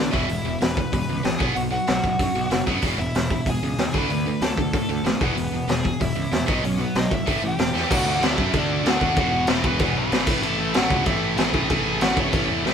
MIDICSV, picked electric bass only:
0, 0, Header, 1, 2, 480
1, 0, Start_track
1, 0, Tempo, 316456
1, 452, Time_signature, 4, 2, 24, 8
1, 19322, End_track
2, 0, Start_track
2, 0, Title_t, "Picked electric bass"
2, 0, Program_c, 0, 34
2, 210, Note_on_c, 0, 28, 90
2, 363, Note_off_c, 0, 28, 0
2, 432, Note_on_c, 0, 28, 95
2, 590, Note_off_c, 0, 28, 0
2, 671, Note_on_c, 0, 28, 91
2, 830, Note_off_c, 0, 28, 0
2, 938, Note_on_c, 0, 28, 91
2, 1241, Note_off_c, 0, 28, 0
2, 1403, Note_on_c, 0, 28, 95
2, 1559, Note_off_c, 0, 28, 0
2, 1655, Note_on_c, 0, 37, 83
2, 1808, Note_off_c, 0, 37, 0
2, 1889, Note_on_c, 0, 33, 92
2, 2044, Note_off_c, 0, 33, 0
2, 2132, Note_on_c, 0, 35, 83
2, 2286, Note_off_c, 0, 35, 0
2, 2378, Note_on_c, 0, 35, 86
2, 2682, Note_off_c, 0, 35, 0
2, 2868, Note_on_c, 0, 35, 84
2, 3018, Note_off_c, 0, 35, 0
2, 3090, Note_on_c, 0, 35, 94
2, 3245, Note_off_c, 0, 35, 0
2, 3323, Note_on_c, 0, 42, 91
2, 3481, Note_off_c, 0, 42, 0
2, 3566, Note_on_c, 0, 35, 84
2, 3723, Note_off_c, 0, 35, 0
2, 3784, Note_on_c, 0, 30, 83
2, 3948, Note_off_c, 0, 30, 0
2, 4052, Note_on_c, 0, 42, 81
2, 4207, Note_off_c, 0, 42, 0
2, 4286, Note_on_c, 0, 28, 79
2, 4443, Note_off_c, 0, 28, 0
2, 4519, Note_on_c, 0, 28, 88
2, 4679, Note_off_c, 0, 28, 0
2, 4769, Note_on_c, 0, 28, 89
2, 5077, Note_off_c, 0, 28, 0
2, 5241, Note_on_c, 0, 28, 84
2, 5400, Note_off_c, 0, 28, 0
2, 5498, Note_on_c, 0, 37, 81
2, 5652, Note_off_c, 0, 37, 0
2, 5727, Note_on_c, 0, 39, 88
2, 5885, Note_off_c, 0, 39, 0
2, 5983, Note_on_c, 0, 38, 86
2, 6136, Note_off_c, 0, 38, 0
2, 6193, Note_on_c, 0, 38, 86
2, 6506, Note_off_c, 0, 38, 0
2, 6697, Note_on_c, 0, 38, 86
2, 6851, Note_off_c, 0, 38, 0
2, 6942, Note_on_c, 0, 38, 81
2, 7095, Note_off_c, 0, 38, 0
2, 7174, Note_on_c, 0, 45, 87
2, 7330, Note_off_c, 0, 45, 0
2, 7427, Note_on_c, 0, 38, 85
2, 7579, Note_off_c, 0, 38, 0
2, 7631, Note_on_c, 0, 33, 85
2, 7794, Note_off_c, 0, 33, 0
2, 7899, Note_on_c, 0, 28, 89
2, 8053, Note_off_c, 0, 28, 0
2, 8127, Note_on_c, 0, 28, 93
2, 8285, Note_off_c, 0, 28, 0
2, 8372, Note_on_c, 0, 28, 90
2, 8529, Note_off_c, 0, 28, 0
2, 8616, Note_on_c, 0, 28, 89
2, 8923, Note_off_c, 0, 28, 0
2, 9119, Note_on_c, 0, 28, 89
2, 9268, Note_off_c, 0, 28, 0
2, 9332, Note_on_c, 0, 37, 83
2, 9489, Note_off_c, 0, 37, 0
2, 9579, Note_on_c, 0, 40, 87
2, 9734, Note_off_c, 0, 40, 0
2, 9833, Note_on_c, 0, 35, 89
2, 9984, Note_off_c, 0, 35, 0
2, 10050, Note_on_c, 0, 35, 85
2, 10360, Note_off_c, 0, 35, 0
2, 10543, Note_on_c, 0, 35, 82
2, 10697, Note_off_c, 0, 35, 0
2, 10797, Note_on_c, 0, 32, 85
2, 10947, Note_off_c, 0, 32, 0
2, 11035, Note_on_c, 0, 33, 86
2, 11185, Note_off_c, 0, 33, 0
2, 11259, Note_on_c, 0, 33, 88
2, 11415, Note_off_c, 0, 33, 0
2, 11511, Note_on_c, 0, 28, 87
2, 11663, Note_off_c, 0, 28, 0
2, 11724, Note_on_c, 0, 40, 86
2, 11884, Note_off_c, 0, 40, 0
2, 11995, Note_on_c, 0, 38, 95
2, 12205, Note_off_c, 0, 38, 0
2, 12214, Note_on_c, 0, 38, 95
2, 12438, Note_off_c, 0, 38, 0
2, 12447, Note_on_c, 0, 38, 89
2, 12685, Note_off_c, 0, 38, 0
2, 12716, Note_on_c, 0, 42, 92
2, 12940, Note_off_c, 0, 42, 0
2, 12958, Note_on_c, 0, 38, 98
2, 13395, Note_off_c, 0, 38, 0
2, 13404, Note_on_c, 0, 38, 93
2, 13642, Note_off_c, 0, 38, 0
2, 13669, Note_on_c, 0, 39, 97
2, 13895, Note_off_c, 0, 39, 0
2, 13904, Note_on_c, 0, 28, 96
2, 14358, Note_off_c, 0, 28, 0
2, 14386, Note_on_c, 0, 28, 92
2, 14838, Note_off_c, 0, 28, 0
2, 14851, Note_on_c, 0, 28, 97
2, 15083, Note_off_c, 0, 28, 0
2, 15093, Note_on_c, 0, 35, 91
2, 15324, Note_off_c, 0, 35, 0
2, 15333, Note_on_c, 0, 32, 95
2, 15580, Note_off_c, 0, 32, 0
2, 15580, Note_on_c, 0, 33, 91
2, 15801, Note_off_c, 0, 33, 0
2, 15810, Note_on_c, 0, 33, 94
2, 16041, Note_off_c, 0, 33, 0
2, 16060, Note_on_c, 0, 33, 98
2, 16285, Note_off_c, 0, 33, 0
2, 16297, Note_on_c, 0, 33, 94
2, 16523, Note_off_c, 0, 33, 0
2, 16536, Note_on_c, 0, 37, 94
2, 16762, Note_off_c, 0, 37, 0
2, 16781, Note_on_c, 0, 33, 102
2, 17231, Note_off_c, 0, 33, 0
2, 17246, Note_on_c, 0, 33, 95
2, 17476, Note_off_c, 0, 33, 0
2, 17491, Note_on_c, 0, 33, 90
2, 17718, Note_off_c, 0, 33, 0
2, 17741, Note_on_c, 0, 33, 90
2, 18189, Note_off_c, 0, 33, 0
2, 18208, Note_on_c, 0, 33, 95
2, 18661, Note_off_c, 0, 33, 0
2, 18703, Note_on_c, 0, 33, 101
2, 18922, Note_off_c, 0, 33, 0
2, 18932, Note_on_c, 0, 40, 91
2, 19156, Note_off_c, 0, 40, 0
2, 19164, Note_on_c, 0, 33, 89
2, 19322, Note_off_c, 0, 33, 0
2, 19322, End_track
0, 0, End_of_file